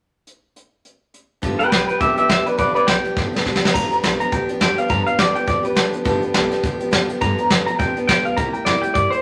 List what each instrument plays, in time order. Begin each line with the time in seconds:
0.27 closed hi-hat
0.56 closed hi-hat
0.85 closed hi-hat
1.14 closed hi-hat
1.42 upright bass G1, steel-string acoustic guitar G2 D3 F3 B3 D4 G4, kick, closed hi-hat
1.59 steel-string acoustic guitar F3 B3 D4 G4, clean electric guitar B4 G5, muted upright bass stroke, closed hi-hat
1.70 upright bass B1, steel-string acoustic guitar F3 B3 D4, clean electric guitar B4 G5, snare, closed hi-hat
1.75 steel-string acoustic guitar G4
1.88 steel-string acoustic guitar F3 B3 D4 G4, clean electric guitar B4 G5, muted upright bass stroke, closed hi-hat
2.00 upright bass C2, steel-string acoustic guitar G2 D3 F3 B3 D4 G4, clean electric guitar G4 E5, kick, closed hi-hat
2.16 steel-string acoustic guitar F3 B3 D4 G4, clean electric guitar G4 E5, muted upright bass stroke, closed hi-hat
2.28 upright bass D2, steel-string acoustic guitar F3 B3 D4 G4, clean electric guitar G4 E5, kick, snare, closed hi-hat
2.46 steel-string acoustic guitar F3 B3 D4 G4, clean electric guitar B4 D5, muted upright bass stroke, closed hi-hat
2.58 upright bass E2, steel-string acoustic guitar G2 D3 F3 B3 D4 G4, clean electric guitar B4 D5, kick, closed hi-hat
2.74 steel-string acoustic guitar F3 B3 D4 G4, clean electric guitar B4 D5, muted upright bass stroke, closed hi-hat
2.87 upright bass B1, steel-string acoustic guitar F3 B3 D4 G4, clean electric guitar G5, snare, closed hi-hat
3.03 steel-string acoustic guitar F3 B3 D4 G4, muted upright bass stroke, closed hi-hat
3.16 upright bass G1, steel-string acoustic guitar G2 D3 F3 B3 D4 G4, kick, snare
3.33 steel-string acoustic guitar F3 B3 D4 G4, muted upright bass stroke, snare
3.45 upright bass D2, steel-string acoustic guitar F3 B3 D4 G4, kick, snare
3.56 snare
3.62 steel-string acoustic guitar F3 B3 D4 G4, muted upright bass stroke, snare
3.74 upright bass G1, steel-string acoustic guitar G2 D3 F3 B3 D4 G4, clean electric guitar A#5, kick, crash
3.91 steel-string acoustic guitar F3 B3 D4 G4, muted upright bass stroke, closed hi-hat
4.03 upright bass B1, steel-string acoustic guitar G2 D3 F3 B3 D4 G4, snare, closed hi-hat
4.19 steel-string acoustic guitar F3 B3 D4 G4, clean electric guitar A#5, muted upright bass stroke, closed hi-hat
4.31 upright bass D2, steel-string acoustic guitar F3 B3 D4 G4, clean electric guitar G5, kick, closed hi-hat
4.48 steel-string acoustic guitar F3 B3 D4 G4, muted upright bass stroke, closed hi-hat
4.60 upright bass E2, steel-string acoustic guitar G2 D3 F3 B3 D4 G4, clean electric guitar G5, snare, closed hi-hat
4.76 steel-string acoustic guitar F3 B3 D4 G4, clean electric guitar F5, closed hi-hat
4.88 steel-string acoustic guitar G2 D3 F3 B3 D4 G4, upright bass G2, clean electric guitar A#5, kick, closed hi-hat
5.06 steel-string acoustic guitar F3 B3 D4 G4, clean electric guitar F5, closed hi-hat
5.18 upright bass E2, steel-string acoustic guitar G2 D3 F3 B3 D4 G4, clean electric guitar D5, snare, closed hi-hat
5.34 steel-string acoustic guitar F3 B3 D4 G4, clean electric guitar G5, muted upright bass stroke, closed hi-hat
5.46 upright bass F2, steel-string acoustic guitar F3 B3 D4 G4, clean electric guitar D5, kick, closed hi-hat
5.63 steel-string acoustic guitar F3 B3 D4 G4, clean electric guitar B4, closed hi-hat
5.75 upright bass D2, steel-string acoustic guitar G2 D3 F3 B3 D4 G4, snare, closed hi-hat
5.93 upright bass F2, steel-string acoustic guitar F3 B3 D4 G4, closed hi-hat
6.04 upright bass G1, steel-string acoustic guitar G2 D3 F3 B3 D4 G4, kick, closed hi-hat
6.22 steel-string acoustic guitar F3 B3 D4 G4, muted upright bass stroke, closed hi-hat
6.34 upright bass B1, steel-string acoustic guitar G2 D3 F3 B3 D4 G4, snare, closed hi-hat
6.50 steel-string acoustic guitar F3 B3 D4 G4, muted upright bass stroke, snare, closed hi-hat
6.63 upright bass D2, steel-string acoustic guitar F3 B3 D4 G4, kick, closed hi-hat
6.80 steel-string acoustic guitar F3 B3 D4 G4, muted upright bass stroke, closed hi-hat
6.91 upright bass E2, steel-string acoustic guitar G2 D3 F3 B3 D4 G4, snare, closed hi-hat
7.08 steel-string acoustic guitar F3 B3 D4 G4, muted upright bass stroke, closed hi-hat
7.21 steel-string acoustic guitar G2 D3 F3 B3 D4 G4, upright bass G2, clean electric guitar A#5, kick, closed hi-hat
7.38 steel-string acoustic guitar F3 B3 D4 G4, closed hi-hat
7.50 upright bass E2, steel-string acoustic guitar G2 D3 F3 B3 D4 G4, snare, closed hi-hat
7.66 steel-string acoustic guitar F3 B3 D4 G4, clean electric guitar A#5, closed hi-hat
7.78 upright bass F2, steel-string acoustic guitar F3 B3 D4 G4, clean electric guitar G5, kick, closed hi-hat
7.96 steel-string acoustic guitar F3 B3 D4 G4, muted upright bass stroke, closed hi-hat
8.07 steel-string acoustic guitar G2 D3 F3 B3 D4 G4, clean electric guitar G5, kick, snare, closed hi-hat
8.24 upright bass D2, steel-string acoustic guitar F3 B3 D4 G4, clean electric guitar F5, closed hi-hat
8.37 upright bass C2, steel-string acoustic guitar C3 G3 A#3 E4 G4, clean electric guitar A#5, kick, closed hi-hat
8.53 steel-string acoustic guitar A#3 E4 G4, clean electric guitar G5, muted upright bass stroke, closed hi-hat
8.65 upright bass E2, steel-string acoustic guitar C3 G3 A#3 E4 G4, clean electric guitar D5, snare, closed hi-hat
8.82 steel-string acoustic guitar A#3 E4 G4, clean electric guitar G5, muted upright bass stroke, closed hi-hat
8.94 upright bass G2, steel-string acoustic guitar G3 A#3 E4 G4, clean electric guitar D5, kick, closed hi-hat
9.11 steel-string acoustic guitar A#3 E4 G4, clean electric guitar C5, closed hi-hat